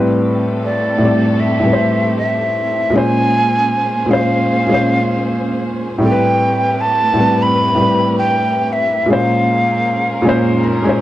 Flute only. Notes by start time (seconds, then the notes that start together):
0.64 D5
1.40 E5
2.18 E5
2.96 G#5
4.11 F5
6.03 G5
6.81 A5
7.42 B5
8.18 G5
8.73 E5
9.10 F5